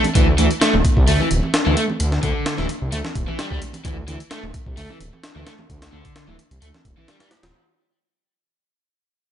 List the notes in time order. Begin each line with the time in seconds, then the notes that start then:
0.03 closed hi-hat, low conga
0.15 D2 E3, kick, closed hi-hat
0.38 D2 E3, closed hi-hat, high conga
0.51 closed hi-hat
0.61 A3, snare, closed hi-hat
0.74 D1, high conga
0.85 kick, closed hi-hat
0.97 C2, kick
1.08 D2 A3, open hi-hat
1.20 E3, low conga
1.31 D1, closed hi-hat
1.43 low conga
1.54 snare, closed hi-hat
1.66 D2 E3
1.77 A3, closed hi-hat
1.88 high conga, low conga
2.00 D2, closed hi-hat
2.12 snare
2.23 D2 D3, kick, closed hi-hat, high conga
2.46 snare, closed hi-hat
2.58 D1 E3, snare, high conga
2.69 closed hi-hat
2.82 C2
2.92 D2 A3, closed hi-hat
3.04 snare, low conga
3.15 D1, kick, closed hi-hat, high conga
3.28 E3, low conga
3.39 G3, snare, closed hi-hat
3.51 D2 G3, kick
3.62 closed hi-hat, high conga
3.73 closed hi-hat, low conga
3.85 D2 E3, kick, closed hi-hat
4.08 D2 E3, closed hi-hat, high conga
4.20 closed hi-hat
4.31 A3, snare, closed hi-hat
4.43 D1, high conga
4.54 kick, closed hi-hat
4.66 C2, kick
4.77 D2 A3, open hi-hat
4.90 E3, low conga
5.01 D1, closed hi-hat
5.13 low conga
5.24 snare, closed hi-hat
5.36 D2 E3
5.46 A3, snare, closed hi-hat
5.59 high conga, low conga
5.70 D2, kick, closed hi-hat
5.82 snare, closed hi-hat
5.92 D2 D3, high conga
6.05 kick, closed hi-hat
6.16 snare, closed hi-hat
6.28 D1 E3, high conga
6.39 closed hi-hat
6.51 C2, closed hi-hat
6.62 D2 A3, closed hi-hat
6.74 snare, low conga
6.85 D1, kick, closed hi-hat, high conga
6.97 E3, low conga
7.08 G3, snare, closed hi-hat
7.20 G3, snare, closed hi-hat
7.31 snare, closed hi-hat, high conga
7.43 D1, snare, closed hi-hat, low conga